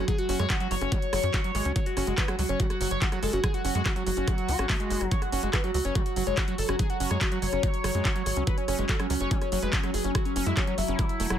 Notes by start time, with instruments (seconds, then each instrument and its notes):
Already playing: synth drone F#3
0.08 acid bass F#3, analog synth lead G#4, kick, closed hi-hat
0.18 analog synth lead F#4, closed hi-hat
0.29 analog synth bass F#1, acid bass C#4, analog synth lead F#4, open hi-hat
0.39 analog synth bass F#2, acid bass G#3, analog synth lead C#5, cross-stick, closed hi-hat
0.50 acid bass F#4, analog synth lead F#4, kick, clap, closed hi-hat
0.60 acid bass F#3, analog synth lead F#4, closed hi-hat
0.71 analog synth bass F#1, acid bass F#3, analog synth lead C#5, open hi-hat
0.81 analog synth bass F#1, acid bass C#4, cross-stick, closed hi-hat
0.92 acid bass F#3, kick, closed hi-hat
1.02 closed hi-hat
1.13 analog synth bass F#1, acid bass F#3, cross-stick, open hi-hat
1.23 analog synth bass F#2, closed hi-hat
1.34 acid bass F#4, kick, clap, closed hi-hat
1.44 acid bass F#3, closed hi-hat
1.55 analog synth bass G#1, acid bass G#3, cross-stick, open hi-hat
1.65 analog synth bass C#2, acid bass C#4, closed hi-hat
1.76 acid bass F#3, analog synth lead C#5, kick, closed hi-hat
1.86 analog synth lead F#4, closed hi-hat
1.97 analog synth bass F#1, acid bass C#4, analog synth lead F#4, cross-stick, open hi-hat
2.07 analog synth bass F#1, acid bass G#3, analog synth lead F#4, closed hi-hat
2.18 acid bass F#4, analog synth lead B4, kick, clap, closed hi-hat
2.28 acid bass F#3, analog synth lead F#4, cross-stick, closed hi-hat
2.39 analog synth bass C#2, acid bass F#3, analog synth lead F#4, open hi-hat
2.49 analog synth bass F#1, acid bass C#4, analog synth lead C#5, closed hi-hat
2.60 acid bass F#3, analog synth lead F#4, kick, closed hi-hat
2.70 analog synth lead F#4, cross-stick, closed hi-hat
2.81 analog synth bass F#1, acid bass F#3, analog synth lead F#4, open hi-hat
2.91 analog synth bass F#1, analog synth lead C#5, closed hi-hat
3.02 acid bass F#4, analog synth lead F#4, kick, clap, closed hi-hat
3.12 acid bass F#3, analog synth lead F#4, cross-stick, closed hi-hat
3.23 analog synth bass F#1, acid bass G#3, analog synth lead A4, open hi-hat
3.33 analog synth bass F#1, acid bass C#4, analog synth lead F#4, closed hi-hat
3.44 acid bass F#3, analog synth lead G#4, kick, cross-stick, closed hi-hat
3.54 analog synth lead F#4, closed hi-hat
3.65 analog synth bass F#1, acid bass C#4, analog synth lead F#4, open hi-hat
3.75 analog synth bass F#2, acid bass G#3, analog synth lead F#4, closed hi-hat
3.86 acid bass F#4, analog synth lead F#4, kick, cross-stick, clap, closed hi-hat
3.96 acid bass F#3, analog synth lead F#4, closed hi-hat
4.07 analog synth bass F#1, acid bass F#3, analog synth lead F#4, open hi-hat
4.17 analog synth bass F#1, acid bass C#4, closed hi-hat
4.28 acid bass F#3, kick, cross-stick, closed hi-hat
4.38 closed hi-hat
4.48 analog synth bass C#2, acid bass F#4, open hi-hat
4.59 analog synth bass G#1, acid bass C#4, cross-stick, closed hi-hat
4.69 acid bass A3, kick, clap, open hi-hat
4.80 acid bass G#3, closed hi-hat
4.90 analog synth bass F#1, open hi-hat
5.01 analog synth bass F#1, acid bass F#3, cross-stick, closed hi-hat
5.11 synth drone F#3, acid bass F#3, analog synth lead C#5, kick, closed hi-hat
5.22 analog synth lead F#4, cross-stick, closed hi-hat
5.32 analog synth bass F#1, acid bass C#4, analog synth lead F#4, open hi-hat
5.43 analog synth bass F#1, acid bass G#3, analog synth lead F#4, closed hi-hat
5.53 acid bass F#4, analog synth lead B4, kick, cross-stick, clap, closed hi-hat
5.64 acid bass F#3, analog synth lead F#4, closed hi-hat
5.74 analog synth bass C#2, acid bass F#3, analog synth lead F#4, open hi-hat
5.85 analog synth bass F#1, acid bass C#4, analog synth lead C#5, closed hi-hat
5.95 acid bass F#3, analog synth lead F#4, kick, cross-stick, closed hi-hat
6.06 analog synth lead F#4, closed hi-hat
6.16 analog synth bass F#1, acid bass F#3, analog synth lead F#4, open hi-hat
6.27 analog synth bass F#1, acid bass G#3, analog synth lead C#5, closed hi-hat
6.37 acid bass F#4, analog synth lead F#4, kick, cross-stick, clap, closed hi-hat
6.48 acid bass F#3, analog synth lead F#4, closed hi-hat
6.58 analog synth bass F#1, analog synth lead A4, open hi-hat
6.69 analog synth bass F#1, acid bass C#4, analog synth lead F#4, cross-stick, closed hi-hat
6.79 acid bass F#3, analog synth lead G#4, kick, closed hi-hat
6.90 analog synth lead F#4, closed hi-hat
7.00 analog synth bass F#1, acid bass C#4, analog synth lead F#4, open hi-hat
7.11 analog synth bass F#2, acid bass G#3, analog synth lead C#5, cross-stick, closed hi-hat
7.21 acid bass F#4, analog synth lead F#4, kick, clap, closed hi-hat
7.32 acid bass F#3, analog synth lead F#4, closed hi-hat
7.42 analog synth bass F#1, acid bass F#3, analog synth lead C#5, open hi-hat
7.53 analog synth bass F#1, acid bass C#4, cross-stick, closed hi-hat
7.63 acid bass F#3, kick, closed hi-hat
7.74 closed hi-hat
7.84 analog synth bass F#1, acid bass F#3, cross-stick, open hi-hat
7.95 analog synth bass F#2, acid bass G#3, closed hi-hat
8.05 acid bass F#4, kick, clap, closed hi-hat
8.16 acid bass F#3, closed hi-hat
8.26 analog synth bass G#1, cross-stick, open hi-hat
8.37 analog synth bass C#2, acid bass C#4, closed hi-hat
8.47 acid bass F#3, analog synth lead B4, kick, closed hi-hat
8.58 analog synth lead C#4, closed hi-hat
8.68 analog synth bass F#1, acid bass C#4, analog synth lead C#4, cross-stick, open hi-hat
8.79 analog synth bass F#1, acid bass G#3, analog synth lead C#4, closed hi-hat
8.89 acid bass F#4, analog synth lead A4, kick, clap, closed hi-hat
9.00 acid bass F#3, analog synth lead C#4, cross-stick, closed hi-hat
9.10 analog synth bass C#2, acid bass F#3, analog synth lead C#4, open hi-hat
9.21 analog synth bass F#1, acid bass C#4, analog synth lead C#5, closed hi-hat
9.31 acid bass F#3, analog synth lead C#4, kick, closed hi-hat
9.42 analog synth lead C#4, cross-stick, closed hi-hat
9.52 analog synth bass F#1, acid bass F#3, analog synth lead C#4, open hi-hat
9.62 analog synth bass F#1, acid bass G#3, analog synth lead B4, closed hi-hat
9.73 analog synth lead C#4, acid bass F#4, kick, clap, closed hi-hat
9.83 acid bass F#3, analog synth lead C#4, cross-stick, closed hi-hat
9.94 analog synth bass F#1, analog synth lead G#4, open hi-hat
10.04 analog synth bass F#1, analog synth lead C#4, acid bass C#4, closed hi-hat
10.15 acid bass F#3, analog synth lead F#4, kick, cross-stick, closed hi-hat
10.25 analog synth lead C#4, closed hi-hat
10.36 analog synth bass F#1, acid bass C#4, analog synth lead C#4, open hi-hat
10.46 analog synth bass F#2, acid bass G#3, analog synth lead E4, closed hi-hat
10.57 analog synth lead C#4, acid bass F#4, kick, cross-stick, clap, closed hi-hat
10.67 acid bass F#3, analog synth lead C#4, closed hi-hat
10.78 analog synth bass F#1, acid bass F#3, analog synth lead E4, open hi-hat
10.88 analog synth bass F#1, acid bass C#4, closed hi-hat
10.99 acid bass F#3, kick, cross-stick, closed hi-hat
11.09 closed hi-hat
11.20 analog synth bass E1, acid bass A3, open hi-hat
11.30 analog synth bass E1, acid bass F#3, cross-stick, closed hi-hat